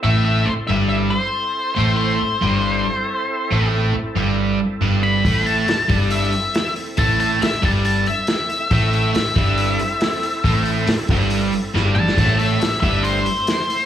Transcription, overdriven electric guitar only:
X:1
M:4/4
L:1/8
Q:1/4=138
K:Am
V:1 name="Overdriven electric guitar" clef=bass
[A,,A,]2 z [G,,G,]2 z3 | [A,,A,]2 z [G,,G,]2 z3 | [A,,A,]2 z [G,,G,]2 z [G,,G,]2 | [A,,A,]2 z [G,,G,]2 z3 |
[A,,A,]2 z [G,,G,]2 z3 | [A,,A,]2 z [G,,G,]2 z3 | [A,,A,]2 z [G,,G,]2 z [G,,G,]2 | [A,,A,]2 z [G,,G,]2 z3 |]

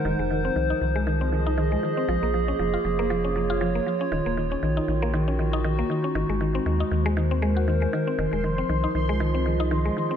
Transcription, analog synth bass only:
X:1
M:4/4
L:1/16
Q:"Swing 16ths" 1/4=118
K:Fphr
V:1 name="Analog synth bass" clef=bass
F,,, F,,,2 z C,, z C,,6- C,, z3 | B,,, B,,,2 z F,,, z F,,,6- F,,, z3 | E,,, E,,,2 z B,,, z B,,,6- B,,, z3 | A,,, A,,,2 z E,, z E,,6- E,, z3 |
F,,, F,,,2 z C,, z C,,6- C,, z3 |]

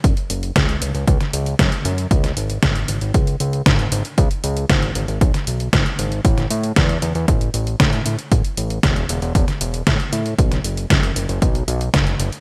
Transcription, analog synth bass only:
X:1
M:4/4
L:1/16
Q:1/4=116
K:C#mix
V:1 name="Analog synth bass" clef=bass
F,,, z F,,,2 C,,2 C,, C,, C,, z C,,2 F,, z F,,2 | C,,2 G,,,2 G,,,2 G,,, G,,, C,,2 C,,2 G,,,2 G,,, z | C,, z C,,2 G,,,2 G,,, G,,, B,,, z B,,,2 G,,, z G,,,2 | =A,,,2 =A,,2 =E,,2 E,, E,, A,,,2 A,,,2 A,,2 A,, z |
=A,,, z A,,,2 =E,,,2 E,,, E,,, E,,, z E,,,2 =A,, z A,,2 | B,,,2 F,,,2 F,,,2 F,,, F,,, B,,,2 B,,,2 F,,,2 F,,, z |]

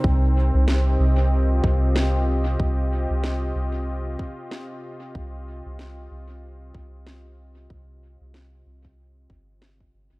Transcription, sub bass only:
X:1
M:4/4
L:1/16
Q:"Swing 16ths" 1/4=94
K:Eb
V:1 name="Sub bass" clef=bass
C,,3 C,,3 C,,4 C,,6 | C,,3 C,,3 C,,4 z6 | C,,3 C,,3 C,,4 C,,6 | C,,3 C,,3 C,,4 G,,,4 G,,, G,,, |]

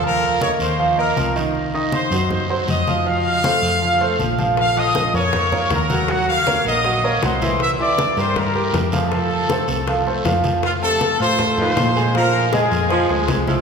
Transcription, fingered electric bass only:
X:1
M:4/4
L:1/8
Q:1/4=158
K:Fphr
V:1 name="Fingered electric bass" clef=bass
E,,3 E,,3 C,,2- | C,,3 G,,3 F,,2- | F,,3 F,,3 B,,,2- | B,,,3 F,,3 E,,2- |
E,,3 B,,,3 C,,2- | C,,3 =G,,3 F,,2- | F,,3 C,,3 F,,2- | F,,3 =A,,3 B,,2- |
B,,3 F,,2 =D,, C,,2 |]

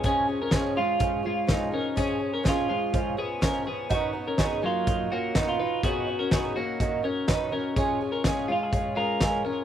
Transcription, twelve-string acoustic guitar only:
X:1
M:4/4
L:1/8
Q:1/4=124
K:Dbmix
V:1 name="Twelve-string acoustic guitar" clef=bass
[D,F,A,D] [F,A,D] [D,F,A,D] [F,A,D] [D,F,A,D] [F,A,D] [D,F,A,D] [F,A,D] | [D,F,A,D] [F,A,D] [D,F,A,D] [F,A,D] [D,F,A,D] [F,A,D] [D,F,A,D] [F,A,D] | [C,E,G,DE] [G,DE] [C,E,G,DE] [G,DE] [E,G,DE] [G,DE] [C,E,G,DE] [G,DE] | [C,E,G,DE] [G,DE] [C,E,G,DE] [G,DE] [E,G,DE] [G,DE] [C,E,G,DE] [G,DE] |
[D,A,DF] [A,DF] [D,A,DF] [A,DF] [D,A,DF] [A,DF] [D,A,DF] [A,DF] |]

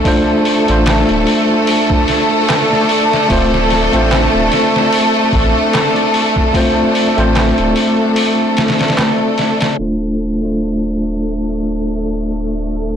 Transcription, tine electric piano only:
X:1
M:4/4
L:1/16
Q:"Swing 16ths" 1/4=74
K:Dm
V:1 name="Tine electric piano"
[A,DFc]3 [A,DFc] z12 | [A,CFc]3 [A,CFc] z12 | [A,CFc]3 [A,CFc] z12 | [A,DFc]3 [A,DFc] z12 |]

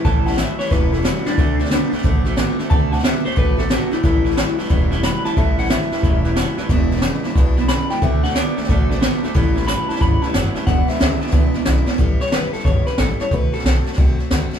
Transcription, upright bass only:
X:1
M:4/4
L:1/8
Q:"Swing" 1/4=181
K:Amix
V:1 name="Upright bass" clef=bass
A,,,3 z E,,,3 z | D,,3 z A,,,3 z | D,,3 z A,,,3 z | A,,,3 z E,,,3 z |
A,,,3 z E,,,3 z | E,,,3 z B,,,3 z | D,,3 z A,,,3 z | A,,,3 z G,,, z F,,, z |
E,,, z D,, z C,, z B,,, z | A,,, z F,,, z G,,, z A,,, z | D,, z B,,, z =C,, z D,, z |]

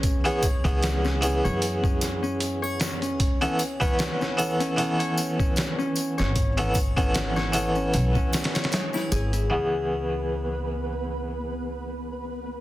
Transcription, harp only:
X:1
M:4/4
L:1/16
Q:"Swing 16ths" 1/4=76
K:C#m
V:1 name="Harp"
z c z C2 C z c z C2 C z c z C | z C z c z C2 C z c z C2 C z c | z C2 C z c z C2 C z c z E G E | z16 |]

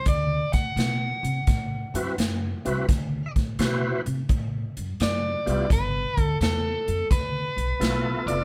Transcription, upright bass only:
X:1
M:4/4
L:1/8
Q:"Swing" 1/4=85
K:Dmix
V:1 name="Upright bass" clef=bass
D,, A,, B,, C, A,, F,, F,, C,, | D,, A,, B,, C, A,, F,, F,, C,, | G,,, D,, E,, =F,, D,, B,,, B,,, =F,,, |]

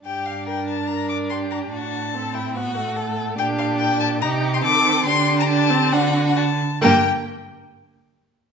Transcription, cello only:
X:1
M:4/4
L:1/8
Q:1/4=142
K:Gm
V:1 name="Cello" clef=bass
G,,8 | A,,8 | B,,4 C,2 E,2 | D,4 D,3 z |
G,, z6 z |]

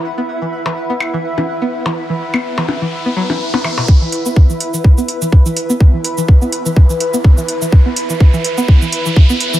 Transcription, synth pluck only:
X:1
M:4/4
L:1/16
Q:"Swing 16ths" 1/4=125
K:Clyd
V:1 name="Synth pluck" clef=bass
z B, z E, z E, z B, z E, z E, z B, z E, | z E, z B, z E, z E, z B, F, E, z B, E, B,, | z E, z B, z E, z E, z B, z E, z E, z B, | z E, z E, z B, z E, z E, z B, z E, z E, |
z B, z E, z E, z B, z E, z E, z B, z E, |]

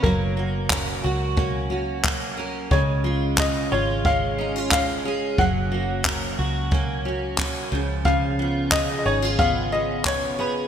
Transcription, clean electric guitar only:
X:1
M:4/4
L:1/8
Q:1/4=90
K:Db
V:1 name="Clean electric guitar"
B, B, D G B, D B, D | A, A, D F A, D A, D | B, B, D G B, D B, F, | F, _C D A C D C D |]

